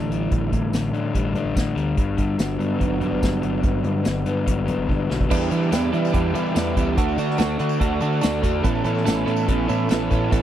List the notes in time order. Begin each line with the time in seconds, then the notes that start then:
Already playing: D3 E3 G3 A3 D4 G4
0.09 A1 G3, closed hi-hat
0.31 A1 A2, kick, closed hi-hat
0.52 A2 D3, kick, closed hi-hat
0.72 A1 D3, snare, closed hi-hat, tambourine
0.92 A2 D4, closed hi-hat
1.14 A1 G3, kick, closed hi-hat
1.34 A2 D4, closed hi-hat
1.44 A1
1.55 A2 D3, kick, snare, closed hi-hat, tambourine
1.76 D2 G3, closed hi-hat
1.96 G1 G2 F#3 B3 D4 F#4 D6, kick, closed hi-hat
2.00 B4 D5 F#5
2.17 G2 D3, kick, closed hi-hat
2.39 G1 D3, snare, closed hi-hat, tambourine
2.59 G2 B3, closed hi-hat
2.79 G1 F#3, kick, closed hi-hat
3.00 G2 B3, closed hi-hat
3.11 G1
3.22 G2 D3, kick, snare, closed hi-hat, tambourine
3.42 G1 F#3, closed hi-hat
3.62 G1 G2, kick, closed hi-hat
3.83 G2 D3, closed hi-hat
4.04 G1 D3, snare, closed hi-hat, tambourine
4.26 G2 B3, closed hi-hat
4.46 G1 F#3, kick, closed hi-hat
4.67 G2 B3, closed hi-hat
4.78 G1
4.89 G2 D3, kick, high tom
5.10 B1 F#3, snare
5.20 kick
5.29 E2 E3 G3 B3 D4 E4 G4 B4 E5 G5 D6, kick, crash, tambourine
5.41 tambourine
5.50 E3 G3 B3 D4 E4 G4, closed hi-hat, tambourine
5.63 tambourine
5.71 E2 E3 G3 B3 D4 E4 G4, snare, closed hi-hat, tambourine
5.92 E3 G3 B3 D4 E4 G4, closed hi-hat, tambourine
6.05 snare, tambourine
6.13 E2 E3 G3 B3 D4 E4 G4, kick, closed hi-hat
6.33 E3 G3 B3 D4 E4 G4, closed hi-hat, tambourine
6.46 tambourine
6.54 E2 E3 G3 B3 D4 E4 G4, snare, closed hi-hat, tambourine
6.75 C#2 E3 G3 B3 D4 E4 G4, kick, closed hi-hat, tambourine
6.96 D2 D3 A3 D4 F#4 A4 D5 F#5, kick, closed hi-hat, tambourine
7.09 tambourine
7.17 D3 A3 D4 F#4, closed hi-hat, tambourine
7.30 snare
7.38 D2 D3 A3 D4 F#4, snare, closed hi-hat, tambourine
7.58 D3 A3 D4 F#4, closed hi-hat, tambourine
7.69 tambourine
7.80 D2 D3 A3 D4 F#4, kick, closed hi-hat
8.00 D3 A3 D4 F#4, closed hi-hat, tambourine
8.13 tambourine
8.21 D3 A3 D4, closed hi-hat, tambourine
8.23 D2 F#4, snare, tambourine
8.43 E2 D3 A3 D4 F#4, kick, closed hi-hat, tambourine
8.63 A1 A2 E3 A3 B3 C#4 E4 A4 E5 B5 C#6, kick, closed hi-hat, tambourine
8.75 tambourine
8.84 A2 E3 A3 B3 C#4 E4 A4, closed hi-hat, tambourine
8.95 snare, tambourine
9.05 A1 A2 E3 A3 B3 C#4 E4 A4, snare, closed hi-hat, tambourine
9.26 A2 E3 A3 B3 C#4 E4 A4, closed hi-hat, tambourine
9.37 tambourine
9.47 A1 A2 E3 A3 B3 C#4 E4 A4, kick, closed hi-hat
9.67 A2 E3 A3 B3 C#4 E4 A4, closed hi-hat, tambourine
9.89 A1 A2 E3 A3 B3 C#4, closed hi-hat, tambourine
9.91 E4 A4, snare, tambourine
10.09 A2 E3 A3 B3 C#4 E4 A4, kick, closed hi-hat, tambourine
10.29 A1 A2 E3 A3 B3 C#4 E4 A4, kick, closed hi-hat
10.33 tambourine